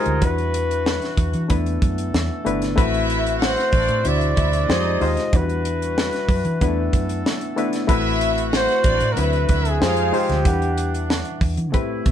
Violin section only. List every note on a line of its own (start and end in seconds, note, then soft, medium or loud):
2.76 3.37 E4 loud
2.76 3.38 E5 loud
3.41 3.67 F#4 medium
3.41 3.67 F#5 loud
3.72 3.98 D4 loud
3.72 3.98 D5 loud
4.04 4.30 E4 medium
4.04 4.30 E5 loud
4.36 4.62 E4 medium
4.36 4.62 E5 loud
4.68 5.14 D#4 medium
4.68 5.14 D#5 loud
7.88 8.49 E4 loud
7.88 8.49 E5 loud
8.52 8.79 F#4 medium
8.52 8.78 F#5 loud
8.84 9.11 D4 loud
8.84 9.10 D5 loud
9.16 9.43 E4 medium
9.16 9.43 E5 loud
9.49 9.75 E4 medium
9.49 9.75 E5 loud
9.81 10.27 F4 medium
9.81 10.27 F5 loud